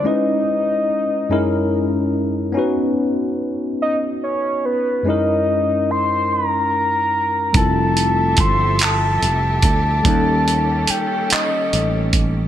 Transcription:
0.04 tine electric piano G#3 C#4 D#4 E4 B4, soft synth lead D#5
1.29 tine electric piano F#2 G#3 C#4 D#4 E4 A#4
2.52 tine electric piano B3 C#4 D#4
2.57 tine electric piano F#4 B4
3.82 soft synth lead D#5
4.24 soft synth lead C#5
4.65 soft synth lead B4
5.03 tine electric piano F#2 G#3 C#4
5.07 tine electric piano D#4 E4 A#4, soft synth lead D#5
5.91 soft synth lead C6
6.33 soft synth lead A#5
7.53 fretless electric bass F1, string section F3 G4 A4 E5, tine electric piano G3 C4 E4, soft synth lead A5, kick, closed hi-hat
7.58 tine electric piano F4 A4
7.97 closed hi-hat
8.37 fretless electric bass G1, soft synth lead C6, kick, closed hi-hat
8.79 soft synth lead A5, clap, closed hi-hat
9.22 fretless electric bass F1, closed hi-hat
9.62 fretless electric bass D2, soft synth lead A5, kick, closed hi-hat
10.03 fretless electric bass D#2, string section D#3 C#4 A4, tine electric piano G3 A#3 C#4, kick, closed hi-hat
10.07 tine electric piano D#4 A4
10.48 closed hi-hat
10.87 soft synth lead G5, muted fretless electric bass stroke, closed hi-hat
11.30 soft synth lead D#5, muted fretless electric bass stroke, clap, closed hi-hat
11.73 fretless electric bass A1, closed hi-hat
12.13 kick, closed hi-hat

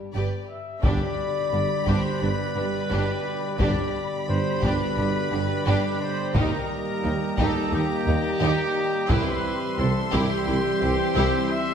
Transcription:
Already playing: french horn section G3
0.14 double bass section G1, cello section G2, viola section G4, violin section B4 D5
0.50 trumpet section E5
0.83 tuba G1, double bass section G1, cello section G2, french horn section B2 G4, trombone section D3 G3, pipe organ G3 G4 D5 B5, viola section D4, violin section G4 B5, trumpet section D5, taiko
1.52 tuba G1, double bass section G1, cello section G2, violin section B3, viola section D4
1.86 tuba G1, double bass section G1, cello section G2, viola section D4, violin section G4, trumpet section C5, taiko
2.20 tuba G1, double bass section G1, cello section G2, violin section D4, viola section D4, trumpet section B4
2.55 tuba G1, double bass section G1, cello section G2, violin section B3, viola section D4
2.90 double bass section G1, tuba G1, cello section G2, viola section D4, violin section G4
3.59 tuba G1, double bass section G1, cello section G2, french horn section B2 G4, trombone section D3 G3, pipe organ G3 G4 D5 B5, viola section D4, violin section G4 B5, trumpet section D5, taiko
4.28 double bass section G1, tuba G1, cello section G2, violin section B3, viola section D4, trumpet section C5
4.61 double bass section G1, tuba G1, cello section G2, viola section D4, violin section G4, trumpet section B4, taiko
4.97 tuba G1, double bass section G1, cello section G2, violin section D4, viola section D4
5.32 tuba G1, double bass section G1, cello section G2, violin section B3, viola section D4
5.66 tuba G1, double bass section G1, cello section G2, viola section D4, violin section G4
6.00 trumpet section C5
6.34 tuba D#2, cello section D#2, double bass section D#2, trombone section D#3, french horn section A#3, pipe organ A#3 D#5, viola section D#4, violin section G4 A#5, trumpet section A#4, taiko
7.04 tuba D#2, cello section D#2, double bass section D#2, violin section A#3, viola section D#4
7.37 tuba D#2, cello section D#2, double bass section D#2, viola section D#4, violin section G4, trumpet section A4, taiko
7.72 tuba D#2, cello section D#2, double bass section D#2, viola section D#4, violin section D#4, trumpet section G4
8.06 double bass section D#2, tuba D#2, cello section D#2, violin section A#3, viola section D#4
8.40 cello section D#2, double bass section D#2, tuba D#2, viola section D#4, violin section G4
9.09 tuba C2, cello section C2, double bass section C2, trombone section E3 G3, pipe organ G3 C4 G4 E5, french horn section C4 G4, viola section E4, violin section G4 C6, trumpet section B4, taiko
9.78 tuba C2, cello section C2, double bass section C2, violin section C4, viola section E4, trumpet section A4
10.13 tuba C2, cello section C2, double bass section C2, viola section E4, violin section G4, trumpet section G4, taiko
10.47 tuba C2, cello section C2, double bass section C2, violin section E4, viola section E4
10.82 tuba C2, cello section C2, double bass section C2, violin section C4, viola section E4
11.16 tuba C2, cello section C2, double bass section C2, viola section E4, violin section G4
11.50 trumpet section E5

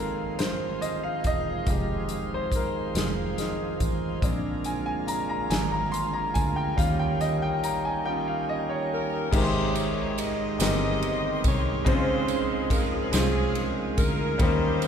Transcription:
Already playing: fingered electric bass G#1, tonewheel organ D#3 F3 G#3 C4 F4, grand piano F3 A#3 C4 A4 A#4, pipe organ G#3 D#4 F4 C5
0.39 fingered electric bass F1, grand piano C5, snare, closed hi-hat
0.81 grand piano D#5, closed hi-hat
1.03 grand piano F5
1.24 fingered electric bass E1, grand piano D#5, kick, closed hi-hat
1.67 fingered electric bass F1, grand piano G#3 D#4 G4, kick, closed hi-hat
2.09 closed hi-hat
2.34 grand piano C5
2.52 grand piano A#4, kick, closed hi-hat
2.95 fingered electric bass F1, grand piano G#4, snare, closed hi-hat
3.38 grand piano F3 G#3 D#4, snare, closed hi-hat
3.80 fingered electric bass A1, kick, closed hi-hat
4.21 fingered electric bass A#1, tonewheel organ D3 A#3, grand piano G#3 C4 D4, pipe organ D4 F4 A#4, kick, closed hi-hat
4.64 grand piano G#5, closed hi-hat
4.86 grand piano G#5
5.07 grand piano A#5, closed hi-hat
5.29 grand piano A#5
5.50 fingered electric bass G#1, grand piano G#5, snare, closed hi-hat
5.72 grand piano A#5
5.92 grand piano C6, closed hi-hat
6.13 grand piano A#5
6.34 fingered electric bass D2, grand piano G#5, kick, closed hi-hat
6.56 grand piano G5
6.76 fingered electric bass D#2, tonewheel organ D#3 G3 A#3 C#4 G4, grand piano G3 C#4 F4 F5, pipe organ C#4 D#4 G4, kick, closed hi-hat
6.99 grand piano G5
7.21 grand piano D#5, closed hi-hat
7.42 grand piano G5
7.63 grand piano A#5, closed hi-hat
7.85 grand piano G#5
8.05 grand piano G3 C#4 F4 G5
8.28 grand piano F5
8.49 grand piano D#5
8.69 grand piano C#5
8.94 saxophone section A#4
9.31 fingered electric bass G#1, grand piano G#2 C3 G#3 D#4 G4 A#4, tonewheel organ D#3 G#3 D#4 G4, saxophone section D#4 G4, kick, crash
9.36 saxophone section C5
9.42 grand piano C6
9.75 saxophone section C#5, ride bell, tambourine
10.18 saxophone section D#5, ride bell, tambourine
10.58 fingered electric bass G1, grand piano G#3 B3 D#4 G4 A#4, saxophone section G4 C5 D#5, snare, ride bell, tambourine
10.65 grand piano C4
11.02 ride bell
11.44 fingered electric bass C2, saxophone section C#5, kick, ride bell, tambourine
11.84 fingered electric bass C#2, grand piano C#3 G#3 C4 C#4 F4 C5, tonewheel organ F3 F4 G#4, saxophone section F4 G#4 C5, kick, ride bell
12.28 ride bell, tambourine
12.70 saxophone section A#4, kick, ride bell, tambourine
13.11 fingered electric bass C2, grand piano G#3 C4 C#4 F4 C5, saxophone section G#4, snare, ride bell, tambourine
13.55 ride bell
13.98 fingered electric bass D2, saxophone section A#4, kick, ride bell, tambourine
14.38 fingered electric bass D#2, grand piano D#3 G3 A#3 C#4 D#4 A#4, tonewheel organ G3 A#3 D#4 G4, saxophone section G4 C5, kick, ride bell
14.82 ride bell, tambourine

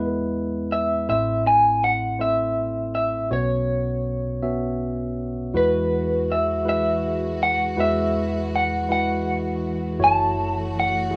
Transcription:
Already playing: tine electric piano E2 E3 G#3 B3 E4 B4, clean electric guitar B4
0.13 clean electric guitar A4
0.72 clean electric guitar E5
1.09 tine electric piano A1 A2 A3 C4 E4 C5, clean electric guitar E5
1.47 clean electric guitar G#5
1.84 clean electric guitar F#5
2.19 tine electric piano A3 C4 E4 C5, clean electric guitar E5
2.95 clean electric guitar E5
3.30 tine electric piano B1 B2 B3 C#4 F#4 C#5, clean electric guitar C#5
4.43 tine electric piano B3 C#4 F#4 E5
5.54 tine electric piano E2 E3 G#3 E4 F#4 B4, string section E3 G#3 F#4, clean electric guitar B4
6.32 clean electric guitar E5
6.65 tine electric piano G#3 E4 F#4 B4
6.69 clean electric guitar E5
7.43 clean electric guitar F#5
7.77 tine electric piano E2 E3 G#3 E4 F#4 B4, clean electric guitar E5
8.56 clean electric guitar F#5
8.89 tine electric piano G#3 E4 F#4 B4, clean electric guitar F#5
9.99 tine electric piano F#1 F#2 A3 E4 F#4 C#5, string section A3 F#4
10.04 clean electric guitar A5
10.80 clean electric guitar F#5
11.11 tine electric piano A3 E4 F#4 G#4

